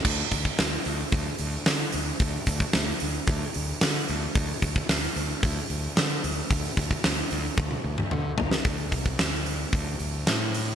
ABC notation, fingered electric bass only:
X:1
M:4/4
L:1/8
Q:1/4=112
K:Cmix
V:1 name="Fingered electric bass" clef=bass
D,, D,, D,, D,, D,, D,, D, D,, | D,, D,, D,, D,, D,, D,, D, D,, | D,, D,, D,, D,, D,, D,, D, D,, | D,, D,, D,, D,, D,, D,, D, D,, |
D,, C,, D,,2 D,, D,, A,,2 |]